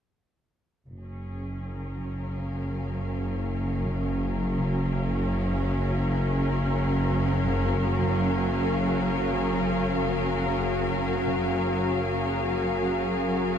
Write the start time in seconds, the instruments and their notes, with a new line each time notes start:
0.89 double bass section F#1, synth drone F#3 F#4, string section F#3
1.00 string section G#4
1.06 string section C#4
1.65 string section A#4
2.23 string section F5